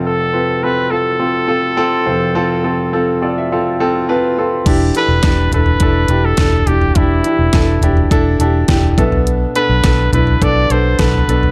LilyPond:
<<
  \new Staff \with { instrumentName = "Trumpet" } { \time 4/4 \key e \phrygian \tempo 4 = 104 a'4 b'8 a'2~ a'8~ | a'2. r4 | r8 b'4 b'4~ b'16 a'8. g'8 | e'2 r2 |
r8 b'4 b'8 d''8 c''8 b'4 | }
  \new Staff \with { instrumentName = "Grand piano" } { \time 4/4 \key e \phrygian << { r1 | r4. d''16 e''16 f''8 g''8 a''8 c'''8 | r1 | r2 r8 a''8 g''8 e''8 |
r1 | } \\ { <c' f' a'>8 <c' f' b'>8 <c' f' a'>8 <c' f' a'>8 <c' f' a'>8 <c' f' a'>8 <c' f' a'>8 <c' f' c''>8 | <c' f' a'>8 <c' f' a'>8 <c' f' a'>8 <c' f' a'>8 <c' f' a'>8 <c' f' a'>8 <c' f' b'>8 <c' f' a'>8 | <d' e' g'>8 <d' e' a'>8 <d' e' g'>8 <d' e' a'>8 <d' e' a'>8 <d' e' g'>8 <d' e' a'>8 <d' e' g'>8 | <d' e' g'>8 <d' e' g'>8 <d' e' a'>8 <d' e' g'>8 <d' e' a'>8 <d' e' g'>8 <d' e' g'>8 <b d' a'>8~ |
<b d' a'>8 <b d' a'>8 <b d' a'>8 <b d' e'>8 <b d' a'>8 <b d' a'>8 <b d' a'>8 <b d' a'>8 | } >> }
  \new Staff \with { instrumentName = "Grand piano" } { \clef bass \time 4/4 \key e \phrygian <f,, f,>2.~ <f,, f,>8 <f,, f,>8~ | <f,, f,>2.~ <f,, f,>8 r8 | e4. r2 r8 | e4. r2 b,8~ |
b,4 r2 r8 b,8 | }
  \new Staff \with { instrumentName = "Fingered electric bass" } { \clef bass \time 4/4 \key e \phrygian r1 | r1 | e,,8 r16 e,,16 e,,8 e,,8 e,,8 e,,8 e,,8 e,,8 | e,,8 r16 e,,16 e,,8 e,,8 e,,8 e,,8 e,,8 b,,8~ |
b,,8 r16 b,,16 b,,8 b,,8 b,,8 b,,8 b,,8 b,,8 | }
  \new DrumStaff \with { instrumentName = "Drums" } \drummode { \time 4/4 r4 r4 r4 r4 | r4 r4 r4 r4 | <cymc hh bd>8 hh8 <hh bd sn>8 <hh tomfh>16 tomfh16 <hh bd>8 hh8 <hh bd sn>16 tomfh16 hh16 tomfh16 | <hh bd>8 hh8 <hh bd sn>8 <hh tomfh>16 tomfh16 <hh bd>8 hh8 <hh bd sn>16 tomfh16 <hh bd>16 tomfh16 |
hh8 hh8 <hh bd sn>8 <hh tomfh>16 tomfh16 <hh bd>8 hh8 <hh bd sn>16 tomfh16 hh16 tomfh16 | }
>>